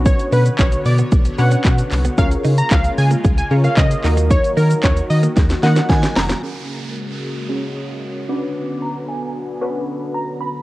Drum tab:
HH |xxoxxxoxxxoxxxox|xxoxxxoxxxoxxxox|xxoxxxoxxxoxxxox|----------------|
SH |xxxxxxxxxxxxxxxx|xxxxxxxxxxxxxxxx|xxxxxxxxxxxxxxxx|----------------|
CP |----x-------x-x-|----x-------x-x-|----x-----------|----------------|
SD |----------------|----------------|--------oooooooo|----------------|
BD |o---o---o---o---|o---o---o---o---|o---o---o---o---|----------------|

HH |----------------|
SH |----------------|
CP |----------------|
SD |----------------|
BD |----------------|